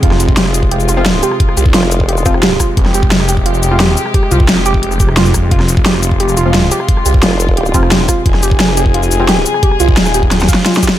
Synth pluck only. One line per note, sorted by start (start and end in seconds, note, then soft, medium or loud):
0.03 0.14 F4 medium
0.37 0.48 G4 medium
0.71 0.79 G4 medium
0.89 0.99 F4 medium
1.23 1.34 G4 medium
1.57 1.64 G4 medium
1.74 1.85 F4 medium
2.09 2.19 G4 medium
2.43 2.50 G4 medium
2.60 2.71 F4 medium
2.94 3.05 G4 medium
3.29 3.36 G4 medium
3.46 3.56 F4 medium
3.80 3.91 G4 medium
4.14 4.21 G4 medium
4.31 4.42 F4 medium
4.66 4.76 G4 medium
5.00 5.07 G4 medium
5.17 5.28 F4 medium
5.51 5.62 F4 medium
5.86 5.96 G4 medium
6.20 6.27 G4 medium
6.37 6.48 F4 medium
6.71 6.82 G4 medium
7.06 7.13 G4 medium
7.23 7.34 F4 medium
7.57 7.68 G4 medium
7.91 7.99 G4 medium
8.09 8.19 F4 medium
8.43 8.54 G4 medium
8.77 8.84 G4 medium
8.94 9.05 F4 medium
9.29 9.39 G4 medium
9.63 9.70 G4 medium
9.80 9.91 F4 medium
10.14 10.25 G4 medium
10.49 10.53 F5 medium
10.66 10.73 F4 medium
10.83 10.87 G4 medium